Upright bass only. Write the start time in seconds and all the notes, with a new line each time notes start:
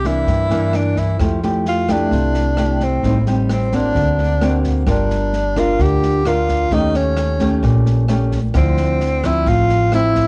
Already playing: C2
0.27 G2
1.19 F2
2.11 C2
3.03 A1
3.95 D2
4.87 G1
5.79 D2
6.71 D#2
7.63 A#1
8.54 D2
9.46 A1